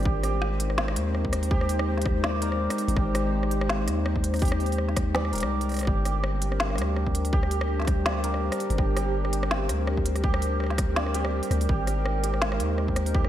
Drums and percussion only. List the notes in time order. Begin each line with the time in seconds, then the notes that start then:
0.03 kick, open hi-hat
0.23 cross-stick, open hi-hat
0.42 cross-stick
0.60 closed hi-hat
0.70 cross-stick
0.78 snare
0.88 cross-stick
0.96 closed hi-hat
1.15 cross-stick
1.25 kick
1.33 cross-stick, closed hi-hat
1.43 open hi-hat
1.51 kick
1.61 cross-stick
1.69 open hi-hat
1.79 cross-stick
1.97 snare
2.02 kick, closed hi-hat
2.06 cross-stick
2.24 cross-stick, snare
2.42 closed hi-hat
2.52 cross-stick
2.70 cross-stick, open hi-hat
2.78 open hi-hat
2.88 open hi-hat
2.97 kick, cross-stick
3.15 cross-stick, open hi-hat
3.43 cross-stick
3.51 closed hi-hat
3.61 cross-stick
3.69 snare
3.88 cross-stick, closed hi-hat
4.06 cross-stick
4.16 kick
4.24 closed hi-hat
4.34 cross-stick, open hi-hat
4.36 open hi-hat
4.39 open hi-hat
4.42 kick, open hi-hat
4.45 open hi-hat
4.48 open hi-hat
4.52 cross-stick
4.60 open hi-hat
4.66 open hi-hat
4.72 open hi-hat
4.78 cross-stick
4.88 snare
4.96 kick, cross-stick, closed hi-hat
5.15 snare
5.25 cross-stick
5.33 closed hi-hat
5.35 closed hi-hat
5.38 closed hi-hat
5.40 cross-stick, closed hi-hat
5.61 open hi-hat
5.69 cross-stick, open hi-hat
5.72 cross-stick, open hi-hat
5.74 cross-stick, open hi-hat
5.77 cross-stick, open hi-hat
5.79 cross-stick, open hi-hat
5.81 cross-stick
5.83 cross-stick
5.85 kick, cross-stick
6.05 cross-stick, open hi-hat
6.24 cross-stick
6.42 closed hi-hat
6.52 cross-stick
6.60 snare
6.70 cross-stick
6.75 cross-stick, closed hi-hat
6.82 cross-stick
6.96 cross-stick
7.07 kick
7.15 closed hi-hat
7.25 open hi-hat
7.33 kick
7.43 cross-stick
7.51 open hi-hat
7.61 cross-stick
7.79 snare
7.81 snare
7.85 kick, cross-stick, snare, closed hi-hat
8.06 cross-stick, snare
8.24 closed hi-hat
8.34 cross-stick
8.52 cross-stick, open hi-hat
8.60 open hi-hat
8.70 open hi-hat
8.78 kick, cross-stick
8.97 cross-stick, open hi-hat
9.25 cross-stick
9.33 closed hi-hat
9.43 cross-stick
9.51 snare
9.69 cross-stick, closed hi-hat
9.87 cross-stick
9.97 kick
10.06 closed hi-hat
10.16 cross-stick, open hi-hat
10.24 kick
10.34 cross-stick
10.42 open hi-hat
10.60 cross-stick
10.64 cross-stick
10.66 cross-stick
10.70 cross-stick, snare
10.72 cross-stick
10.76 kick, cross-stick
10.78 cross-stick, closed hi-hat
10.96 snare
11.06 cross-stick
11.14 closed hi-hat
11.25 cross-stick
11.43 open hi-hat
11.51 cross-stick, open hi-hat
11.61 open hi-hat
11.69 kick
11.87 cross-stick, open hi-hat
12.06 cross-stick
12.24 closed hi-hat
12.34 cross-stick
12.42 snare
12.52 cross-stick
12.60 closed hi-hat
12.78 cross-stick
12.88 kick
12.96 cross-stick, closed hi-hat
13.06 open hi-hat
13.15 kick
13.24 cross-stick